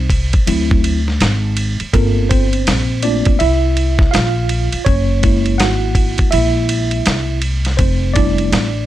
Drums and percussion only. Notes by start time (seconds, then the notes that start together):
0.10 kick, ride
0.33 kick, ride
0.47 ride
0.71 kick
0.84 ride
1.08 snare
1.21 snare, hi-hat pedal, ride
1.57 ride
1.80 ride
1.94 kick, ride
2.31 kick, ride
2.53 ride
2.67 snare, hi-hat pedal, ride
3.03 ride
3.25 kick, ride
3.40 ride
3.77 ride
3.99 kick, snare
4.14 snare, hi-hat pedal, ride
4.49 ride
4.72 ride
4.86 kick, ride
5.23 kick, ride
5.46 ride
5.60 snare, hi-hat pedal, ride
5.95 kick, ride
6.18 kick, ride
6.32 ride
6.69 ride
6.91 ride
7.06 snare, hi-hat pedal, ride
7.42 ride
7.65 snare, ride
7.79 kick, ride
8.16 kick, ride
8.38 ride
8.53 snare, hi-hat pedal, ride